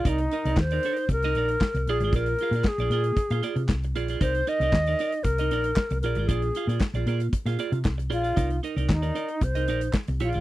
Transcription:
<<
  \new Staff \with { instrumentName = "Alto flute" } { \time 4/4 \key c \minor \tempo 4 = 115 ees'4 c''4 bes'4. aes'8 | bes'4 aes'2 r4 | c''8 ees''4. bes'4. bes'8 | aes'4 r2 r8 f'8~ |
f'8 r8 ees'4 c''4 r8 f'8 | }
  \new Staff \with { instrumentName = "Clean electric guitar" } { \time 4/4 \key c \minor <ees' bes' d''>16 r16 <ees' bes' ees''>16 <ees' bes' d''>16 r16 <ees' bes' d''>16 <ees' bes' d''>8 r16 <ees' bes' ees''>16 <ees' bes' d''>16 r8. <f' aes' d''>16 <f' aes' d''>16 | <f' aes' d''>16 r16 <f' aes' f''>16 <f' aes' d''>16 r16 <f' aes' d''>16 <f' aes' d''>16 r8 <f' aes' f''>16 <f' aes' d''>16 r8. <f' aes' d''>16 <f' aes' d''>16 | <ees' bes' d''>16 r16 <ees' bes' ees''>16 <ees' bes' d''>16 r16 <ees' bes' d''>16 <ees' bes' d''>16 r8 <ees' bes' ees''>16 <ees' bes' d''>16 r8. <f' aes' d''>16 <f' aes' d''>16 | <f' aes' d''>16 r16 <f' aes' f''>16 <f' aes' d''>16 r16 <f' aes' d''>16 <f' aes' d''>16 r8 <f' aes' f''>16 <f' aes' d''>16 r8. <f' aes' d''>16 <f' aes' d''>16 |
<ees' bes' d''>16 r16 <ees' bes' ees''>16 <ees' bes' d''>16 r16 <ees' bes' d''>16 <ees' bes' d''>16 r8 <ees' bes' ees''>16 <ees' bes' d''>16 r8. <f' aes' d''>16 <f' aes' d''>16 | }
  \new Staff \with { instrumentName = "Fingered electric bass" } { \clef bass \time 4/4 \key c \minor c,8 r16 c,16 ees,8 r8 c,8 bes,,8 r16 c,16 bes,,16 aes,,16 | bes,,8 r16 bes,16 r16 bes,,16 bes,8 r16 bes,16 r16 c16 c,8 bes,,8 | c,8 r16 c,16 ees,8 r8 c,8 bes,,8 r16 c,16 bes,,16 aes,,16 | bes,,8 r16 bes,16 r16 bes,,16 bes,8 r16 bes,16 r16 c16 c,8 bes,,8 |
c,8 r16 c,16 ees,8 r8 c,8 bes,,8 r16 c,16 bes,,16 aes,,16 | }
  \new DrumStaff \with { instrumentName = "Drums" } \drummode { \time 4/4 <hh bd>16 hh16 hh16 hh16 <hc bd sn>16 hh16 hh16 hh16 <hh bd>16 <hh sn>16 hh16 hh16 <hc bd sn>16 hh16 hh16 hh16 | <hh bd>16 hh16 hh16 hh16 <hc bd sn>16 hh16 hh16 hh16 <hh bd>16 hh16 hh16 hh16 <hc bd sn>16 hh16 hh16 hh16 | <hh bd>16 hh16 hh16 hh16 <hc bd sn>16 hh16 hh16 hh16 <hh bd>16 hh16 hh16 hh16 <hc bd sn>16 hh16 hh16 hh16 | <hh bd>16 hh16 hh16 hh16 <hc bd sn>16 hh16 hh16 hh16 <hh bd>16 <hh sn>16 hh16 hh16 <hc bd sn>16 hh16 hh16 hh16 |
<hh bd>16 hh16 hh16 hh16 <hc bd sn>16 hh16 hh16 hh16 <hh bd>16 hh16 hh16 hh16 <hc bd sn>16 hh16 hh16 hh16 | }
>>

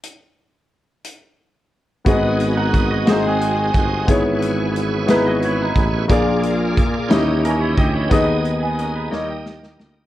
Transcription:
<<
  \new Staff \with { instrumentName = "Clean electric guitar" } { \time 6/8 \key gis \minor \tempo 4. = 59 r2. | r8. <ais' fis''>8 <fis' dis''>16 <dis' bis'>16 <bis gis'>4~ <bis gis'>16 | r4. <dis' b'>16 <fis' dis''>16 <e' cis''>16 <dis' b'>8. | r2 <cis' ais'>16 <e' cis''>16 <g' dis''>16 <e' cis''>16~ |
<e' cis''>16 r8 <b gis'>16 <cis' ais'>16 <dis' b'>16 cis''16 <g' dis''>4~ <g' dis''>16 | }
  \new Staff \with { instrumentName = "Tonewheel organ" } { \time 6/8 \key gis \minor r2. | <b fis' gis' dis''>4. <bis fis' gis' dis''>4. | <e b gis' cis''>2. | <ais eis' gis' d''>4. <e cis' g' dis''>4. |
<b dis' gis' dis''>4. <ais dis' g' dis''>4. | }
  \new Staff \with { instrumentName = "Grand piano" } { \time 6/8 \key gis \minor r2. | <b fis' gis' dis''>4 r8 <ais bis fis' gis' dis''>4 r8 | <b e' gis' cis''>4 r8 <b e' gis' b'>4 r8 | <ais eis' gis' d''>4 r8 <cis' e' g' dis''>4 r8 |
<b dis' gis' dis''>4 r8 <ais dis' g' dis''>4 r8 | }
  \new Staff \with { instrumentName = "Grand piano" } { \clef bass \time 6/8 \key gis \minor r2. | gis,4. gis4. | gis,4. r4. | ais,4. dis'4. |
dis4. g4. | }
  \new Staff \with { instrumentName = "Tuba" } { \clef bass \time 6/8 \key gis \minor r2. | gis,,4. gis,,4 g,,8 | gis,,4. gis,,4 a,,8 | ais,,4 r8 dis,4 d,8 |
dis,4. dis,4 d,8 | }
  \new DrumStaff \with { instrumentName = "Drums" } \drummode { \time 6/8 hh4. hh4. | <hh bd>8 hh8 <hh bd>8 <hh sn>8 hh8 <hh bd>8 | <hh bd>8 hh8 hh8 <hh sn>8 hh8 <hh bd>8 | <hh bd>8 hh8 <hh bd>8 <hh sn>8 hh8 <hh bd>8 |
<hh bd>8 hh8 hh8 sn8 sn16 sn16 sn8 | }
>>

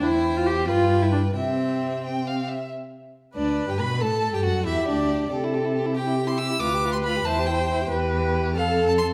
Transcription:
<<
  \new Staff \with { instrumentName = "Violin" } { \time 6/8 \key c \major \tempo 4. = 92 g''4. g''4. | g''2~ g''8 r8 | \key g \major r4. d''8. g''16 b''8 | a''8. g''16 fis''8 e''8 d''4 |
r4. g''8. c'''16 e'''8 | d'''8. c'''16 b''8 a''8 g''4 | \key c \major r4. f''8. a''16 c'''8 | }
  \new Staff \with { instrumentName = "Viola" } { \time 6/8 \key c \major e'8. f'16 g'8 f'8. e'16 d'8 | c'2~ c'8 r8 | \key g \major r4. b'4. | a'4. g'4. |
a'4. g'4. | b'4. c''4. | \key c \major b'4. a'4. | }
  \new Staff \with { instrumentName = "Violin" } { \time 6/8 \key c \major c''4. b'4. | e''4. g''8 f''8 e''8 | \key g \major r4. d'8. g'16 b'8 | a'8. g'16 fis'8 e'8 d'4 |
g'16 e'16 g'16 e'16 g'16 e'16 g'16 e'16 g'16 e'16 g'16 e'16 | f'16 g'16 f'16 g'16 f'16 g'16 e'16 g'16 e'16 g'16 e'16 g'16 | \key c \major g'4. a'4. | }
  \new Staff \with { instrumentName = "Cello" } { \clef bass \time 6/8 \key c \major e,4. g,4. | c2~ c8 r8 | \key g \major r4. d,8. g,16 b,8 | a,8. g,16 fis,8 e,8 d,4 |
c2. | d,4. e,4. | \key c \major e,4. f,4. | }
>>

